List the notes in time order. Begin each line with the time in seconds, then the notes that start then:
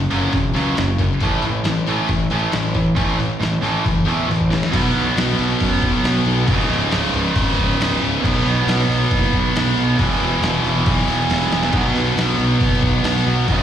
0.10 F#1 F#2 C#3 F#3, open hi-hat
0.32 E1 F#2 C#3, kick, open hi-hat
0.54 C#2 F#2 C#3 F#3, open hi-hat
0.76 F#1 F#2 C#3, snare, open hi-hat
0.98 F#2 C#3, kick, open hi-hat
1.20 A1 A2 E3 A3, kick, open hi-hat
1.42 A1 A2 E3, open hi-hat
1.64 A1 A2 E3, snare, open hi-hat
1.86 A2 E3 A3, open hi-hat
2.09 A1 A2 E3, kick, open hi-hat
2.30 A1 A2 E3 A3, open hi-hat
2.52 A1 A2 E3, snare, open hi-hat
2.74 A2 E3, kick, open hi-hat
2.96 A1 A2 E3 A3, kick, open hi-hat
3.19 A2 E3, open hi-hat
3.41 A1 A2 E3, snare, open hi-hat
3.62 A1 A2 E3 A3, open hi-hat
3.84 F#1 A2 E3, kick, open hi-hat
4.05 E2 A2 E3 A3, open hi-hat
4.28 A1 A2 E3, open hi-hat, high tom
4.41 kick
4.50 A2 E3, snare, open hi-hat
4.63 snare
4.72 B1 B2 F#3 B3, kick, open hi-hat, crash
4.78 B2 F#3
4.88 B2 F#3
4.94 B1 B2 F#3, open hi-hat
5.03 B2 F#3
5.10 B2 F#3
5.16 B1 B2 F#3, snare, open hi-hat
5.26 B2 F#3
5.33 B2 F#3
5.39 B1 B2 F#3, open hi-hat
5.48 B2 F#3
5.56 B2 F#3
5.60 F#2 B2 F#3, kick, open hi-hat
5.72 B2 F#3
5.78 B2 F#3, open hi-hat
5.83 B1, kick
5.87 B2 F#3
5.95 B2 F#3
6.02 B1 B2 F#3, snare, open hi-hat
6.10 B2 F#3
6.16 B2 F#3
6.25 B1 B2 F#3, open hi-hat
6.32 B2 F#3
6.40 B2 F#3
6.47 C#1 C#2 G#2 C#3, kick, open hi-hat
6.55 C#2 G#2
6.62 C#2 G#2
6.70 C#1 C#2 G#2, snare, open hi-hat
6.79 C#2 G#2
6.86 C#2 G#2
6.91 C#1 C#2 G#2, snare, open hi-hat
7.01 C#2 G#2
7.09 C#2 G#2
7.14 C#1 C#2 G#2, open hi-hat
7.23 C#2 G#2
7.31 C#2 G#2
7.36 G#1 C#2, kick, open hi-hat
7.41 G#2
7.46 C#2 G#2
7.54 C#2 G#2
7.58 C#1, kick, open hi-hat
7.62 C#2 G#2
7.70 C#2 G#2
7.77 C#1 C#2 G#2
7.81 C#2, snare, open hi-hat
7.86 G#2
7.93 C#2 G#2
8.00 C#1 C#2 G#2, open hi-hat
8.08 C#2 G#2
8.16 C#2 G#2
8.23 B1 B2 F#3 B3, kick, crash
8.32 B2 F#3
8.37 B2 F#3
8.46 B1 B2 F#3, open hi-hat
8.54 B2 F#3
8.62 B2 F#3
8.67 B1 B2 F#3, snare, open hi-hat
8.76 B2 F#3
8.84 B2 F#3
8.89 B1 B2 F#3, open hi-hat
8.99 B2 F#3
9.07 B2 F#3
9.11 F#1 B2 F#3, kick, open hi-hat
9.23 B2 F#3
9.30 B1 B2 F#3, kick, open hi-hat
9.38 B2 F#3
9.45 B2 F#3
9.53 B1 B2 F#3, snare, open hi-hat
9.60 B2 F#3
9.68 B2 F#3
9.76 B1 B2 F#3, open hi-hat
9.83 B2 F#3
9.91 B2 F#3
9.99 E1 E2 B2 E3, kick, open hi-hat
10.06 E2 B2
10.13 E2 B2
10.21 E1 E2 B2, open hi-hat
10.29 E2 B2
10.38 E2 B2
10.42 E1 E2, snare, open hi-hat
10.47 B2
10.52 E2 B2
10.60 E2 B2
10.65 E1 E2, open hi-hat
10.70 B2
10.74 E2 B2
10.82 E2 B2, open hi-hat
10.87 B1 E2, kick
10.94 E2 B2
11.01 E2 B2
11.08 E1 B2, open hi-hat
11.13 E2 B2
11.20 E2
11.25 E2 B2
11.30 E1 B2, snare, open hi-hat
11.36 E2
11.40 E2 B2
11.48 E2 B2, open hi-hat
11.53 E1 B2, snare
11.59 E2
11.63 B2, snare
11.67 E2
11.73 B1 B2 F#3 B3, kick, crash
11.81 B2 F#3
11.88 B2 F#3
11.95 B1 B2 F#3, snare, open hi-hat
12.03 B2 F#3
12.10 B2 F#3
12.17 B1 B2 F#3, snare, open hi-hat
12.26 B2 F#3
12.33 B2 F#3
12.39 B1 B2, open hi-hat
12.43 F#3
12.49 B2 F#3
12.57 F#1 B2 F#3, kick, open hi-hat
12.64 B2 F#3
12.73 B2 F#3
12.80 B1 B2 F#3, kick, open hi-hat
12.87 B2 F#3
12.96 B2 F#3
13.02 B1 B2 F#3, snare, open hi-hat
13.11 B2 F#3
13.18 B2 F#3
13.26 B1 B2 F#3, open hi-hat
13.34 B2 F#3
13.40 B2 F#3
13.48 C#1 C#2 G#2 C#3, kick, open hi-hat
13.57 C#2 G#2